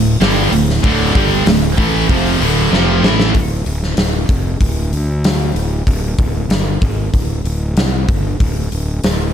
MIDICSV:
0, 0, Header, 1, 4, 480
1, 0, Start_track
1, 0, Key_signature, -1, "minor"
1, 0, Tempo, 630915
1, 633, Time_signature, 4, 2, 24, 8
1, 2546, Key_signature, -1, "minor"
1, 7101, End_track
2, 0, Start_track
2, 0, Title_t, "Distorted electric guitar"
2, 0, Program_c, 0, 30
2, 0, Note_on_c, 0, 38, 65
2, 0, Note_on_c, 0, 45, 74
2, 108, Note_off_c, 0, 38, 0
2, 111, Note_off_c, 0, 45, 0
2, 156, Note_on_c, 0, 43, 94
2, 162, Note_on_c, 0, 50, 100
2, 166, Note_on_c, 0, 55, 93
2, 387, Note_off_c, 0, 43, 0
2, 390, Note_off_c, 0, 50, 0
2, 392, Note_off_c, 0, 55, 0
2, 398, Note_on_c, 0, 38, 72
2, 404, Note_on_c, 0, 45, 65
2, 587, Note_off_c, 0, 38, 0
2, 590, Note_off_c, 0, 45, 0
2, 625, Note_on_c, 0, 38, 105
2, 629, Note_on_c, 0, 45, 102
2, 633, Note_on_c, 0, 50, 124
2, 859, Note_off_c, 0, 50, 0
2, 861, Note_off_c, 0, 38, 0
2, 863, Note_off_c, 0, 45, 0
2, 868, Note_on_c, 0, 43, 92
2, 868, Note_on_c, 0, 50, 115
2, 876, Note_on_c, 0, 55, 121
2, 1101, Note_off_c, 0, 43, 0
2, 1101, Note_off_c, 0, 50, 0
2, 1105, Note_off_c, 0, 55, 0
2, 1110, Note_on_c, 0, 45, 70
2, 1111, Note_on_c, 0, 38, 72
2, 1302, Note_off_c, 0, 38, 0
2, 1302, Note_off_c, 0, 45, 0
2, 1350, Note_on_c, 0, 45, 82
2, 1352, Note_on_c, 0, 52, 89
2, 1358, Note_on_c, 0, 57, 99
2, 1578, Note_off_c, 0, 45, 0
2, 1581, Note_off_c, 0, 52, 0
2, 1581, Note_on_c, 0, 41, 83
2, 1584, Note_on_c, 0, 48, 78
2, 1586, Note_off_c, 0, 57, 0
2, 1589, Note_on_c, 0, 53, 90
2, 1814, Note_off_c, 0, 41, 0
2, 1817, Note_on_c, 0, 38, 100
2, 1818, Note_off_c, 0, 48, 0
2, 1821, Note_off_c, 0, 53, 0
2, 1825, Note_on_c, 0, 45, 106
2, 1830, Note_on_c, 0, 50, 110
2, 2053, Note_off_c, 0, 38, 0
2, 2056, Note_on_c, 0, 41, 85
2, 2057, Note_off_c, 0, 45, 0
2, 2060, Note_on_c, 0, 48, 78
2, 2061, Note_off_c, 0, 50, 0
2, 2065, Note_on_c, 0, 53, 88
2, 2283, Note_off_c, 0, 41, 0
2, 2286, Note_on_c, 0, 45, 90
2, 2287, Note_off_c, 0, 48, 0
2, 2290, Note_on_c, 0, 52, 91
2, 2294, Note_off_c, 0, 53, 0
2, 2298, Note_on_c, 0, 57, 99
2, 2529, Note_off_c, 0, 45, 0
2, 2531, Note_off_c, 0, 52, 0
2, 2534, Note_off_c, 0, 57, 0
2, 7101, End_track
3, 0, Start_track
3, 0, Title_t, "Fingered electric bass"
3, 0, Program_c, 1, 33
3, 0, Note_on_c, 1, 26, 80
3, 139, Note_off_c, 1, 26, 0
3, 159, Note_on_c, 1, 31, 96
3, 379, Note_off_c, 1, 31, 0
3, 398, Note_on_c, 1, 26, 88
3, 618, Note_off_c, 1, 26, 0
3, 637, Note_on_c, 1, 26, 97
3, 857, Note_off_c, 1, 26, 0
3, 877, Note_on_c, 1, 31, 94
3, 1097, Note_off_c, 1, 31, 0
3, 1111, Note_on_c, 1, 26, 80
3, 1333, Note_off_c, 1, 26, 0
3, 1354, Note_on_c, 1, 33, 85
3, 1574, Note_off_c, 1, 33, 0
3, 1591, Note_on_c, 1, 29, 93
3, 1812, Note_off_c, 1, 29, 0
3, 1830, Note_on_c, 1, 26, 95
3, 2051, Note_off_c, 1, 26, 0
3, 2066, Note_on_c, 1, 29, 93
3, 2289, Note_off_c, 1, 29, 0
3, 2308, Note_on_c, 1, 33, 95
3, 2530, Note_off_c, 1, 33, 0
3, 2547, Note_on_c, 1, 26, 79
3, 2769, Note_off_c, 1, 26, 0
3, 2787, Note_on_c, 1, 26, 75
3, 3009, Note_off_c, 1, 26, 0
3, 3023, Note_on_c, 1, 26, 81
3, 3247, Note_off_c, 1, 26, 0
3, 3263, Note_on_c, 1, 29, 84
3, 3487, Note_off_c, 1, 29, 0
3, 3506, Note_on_c, 1, 26, 67
3, 3729, Note_off_c, 1, 26, 0
3, 3744, Note_on_c, 1, 38, 90
3, 4195, Note_off_c, 1, 38, 0
3, 4219, Note_on_c, 1, 26, 72
3, 4446, Note_off_c, 1, 26, 0
3, 4466, Note_on_c, 1, 26, 81
3, 4690, Note_off_c, 1, 26, 0
3, 4704, Note_on_c, 1, 26, 76
3, 4929, Note_off_c, 1, 26, 0
3, 4937, Note_on_c, 1, 31, 86
3, 5166, Note_off_c, 1, 31, 0
3, 5186, Note_on_c, 1, 32, 91
3, 5411, Note_off_c, 1, 32, 0
3, 5429, Note_on_c, 1, 26, 69
3, 5653, Note_off_c, 1, 26, 0
3, 5663, Note_on_c, 1, 26, 87
3, 5890, Note_off_c, 1, 26, 0
3, 5902, Note_on_c, 1, 36, 89
3, 6130, Note_off_c, 1, 36, 0
3, 6152, Note_on_c, 1, 31, 91
3, 6376, Note_off_c, 1, 31, 0
3, 6391, Note_on_c, 1, 26, 96
3, 6616, Note_off_c, 1, 26, 0
3, 6635, Note_on_c, 1, 26, 70
3, 6858, Note_off_c, 1, 26, 0
3, 6873, Note_on_c, 1, 26, 74
3, 7098, Note_off_c, 1, 26, 0
3, 7101, End_track
4, 0, Start_track
4, 0, Title_t, "Drums"
4, 161, Note_on_c, 9, 46, 85
4, 167, Note_on_c, 9, 38, 127
4, 237, Note_off_c, 9, 46, 0
4, 243, Note_off_c, 9, 38, 0
4, 398, Note_on_c, 9, 46, 62
4, 475, Note_off_c, 9, 46, 0
4, 525, Note_on_c, 9, 38, 37
4, 601, Note_off_c, 9, 38, 0
4, 639, Note_on_c, 9, 36, 115
4, 639, Note_on_c, 9, 46, 85
4, 715, Note_off_c, 9, 36, 0
4, 715, Note_off_c, 9, 46, 0
4, 877, Note_on_c, 9, 36, 113
4, 880, Note_on_c, 9, 46, 60
4, 954, Note_off_c, 9, 36, 0
4, 956, Note_off_c, 9, 46, 0
4, 1114, Note_on_c, 9, 46, 90
4, 1120, Note_on_c, 9, 38, 116
4, 1190, Note_off_c, 9, 46, 0
4, 1196, Note_off_c, 9, 38, 0
4, 1355, Note_on_c, 9, 36, 116
4, 1356, Note_on_c, 9, 46, 60
4, 1431, Note_off_c, 9, 36, 0
4, 1432, Note_off_c, 9, 46, 0
4, 1593, Note_on_c, 9, 36, 104
4, 1596, Note_on_c, 9, 46, 85
4, 1670, Note_off_c, 9, 36, 0
4, 1672, Note_off_c, 9, 46, 0
4, 1837, Note_on_c, 9, 46, 55
4, 1913, Note_off_c, 9, 46, 0
4, 2076, Note_on_c, 9, 38, 63
4, 2152, Note_off_c, 9, 38, 0
4, 2316, Note_on_c, 9, 38, 92
4, 2392, Note_off_c, 9, 38, 0
4, 2431, Note_on_c, 9, 38, 97
4, 2507, Note_off_c, 9, 38, 0
4, 2545, Note_on_c, 9, 46, 66
4, 2547, Note_on_c, 9, 36, 98
4, 2621, Note_off_c, 9, 46, 0
4, 2624, Note_off_c, 9, 36, 0
4, 2786, Note_on_c, 9, 46, 58
4, 2863, Note_off_c, 9, 46, 0
4, 2912, Note_on_c, 9, 38, 35
4, 2988, Note_off_c, 9, 38, 0
4, 3021, Note_on_c, 9, 46, 78
4, 3027, Note_on_c, 9, 38, 108
4, 3097, Note_off_c, 9, 46, 0
4, 3103, Note_off_c, 9, 38, 0
4, 3264, Note_on_c, 9, 36, 106
4, 3265, Note_on_c, 9, 46, 59
4, 3340, Note_off_c, 9, 36, 0
4, 3341, Note_off_c, 9, 46, 0
4, 3504, Note_on_c, 9, 36, 88
4, 3504, Note_on_c, 9, 46, 78
4, 3580, Note_off_c, 9, 46, 0
4, 3581, Note_off_c, 9, 36, 0
4, 3750, Note_on_c, 9, 46, 46
4, 3826, Note_off_c, 9, 46, 0
4, 3989, Note_on_c, 9, 46, 87
4, 3995, Note_on_c, 9, 38, 112
4, 4065, Note_off_c, 9, 46, 0
4, 4071, Note_off_c, 9, 38, 0
4, 4231, Note_on_c, 9, 46, 54
4, 4307, Note_off_c, 9, 46, 0
4, 4465, Note_on_c, 9, 36, 85
4, 4469, Note_on_c, 9, 46, 78
4, 4541, Note_off_c, 9, 36, 0
4, 4545, Note_off_c, 9, 46, 0
4, 4706, Note_on_c, 9, 36, 112
4, 4706, Note_on_c, 9, 46, 58
4, 4782, Note_off_c, 9, 36, 0
4, 4782, Note_off_c, 9, 46, 0
4, 4947, Note_on_c, 9, 46, 76
4, 4953, Note_on_c, 9, 38, 117
4, 5023, Note_off_c, 9, 46, 0
4, 5029, Note_off_c, 9, 38, 0
4, 5188, Note_on_c, 9, 36, 112
4, 5189, Note_on_c, 9, 46, 54
4, 5264, Note_off_c, 9, 36, 0
4, 5265, Note_off_c, 9, 46, 0
4, 5429, Note_on_c, 9, 36, 85
4, 5431, Note_on_c, 9, 46, 69
4, 5506, Note_off_c, 9, 36, 0
4, 5507, Note_off_c, 9, 46, 0
4, 5671, Note_on_c, 9, 46, 45
4, 5747, Note_off_c, 9, 46, 0
4, 5909, Note_on_c, 9, 46, 72
4, 5915, Note_on_c, 9, 38, 119
4, 5985, Note_off_c, 9, 46, 0
4, 5992, Note_off_c, 9, 38, 0
4, 6151, Note_on_c, 9, 46, 52
4, 6152, Note_on_c, 9, 36, 104
4, 6227, Note_off_c, 9, 46, 0
4, 6228, Note_off_c, 9, 36, 0
4, 6393, Note_on_c, 9, 36, 100
4, 6394, Note_on_c, 9, 46, 72
4, 6469, Note_off_c, 9, 36, 0
4, 6470, Note_off_c, 9, 46, 0
4, 6634, Note_on_c, 9, 46, 50
4, 6710, Note_off_c, 9, 46, 0
4, 6875, Note_on_c, 9, 46, 79
4, 6881, Note_on_c, 9, 38, 118
4, 6951, Note_off_c, 9, 46, 0
4, 6957, Note_off_c, 9, 38, 0
4, 7101, End_track
0, 0, End_of_file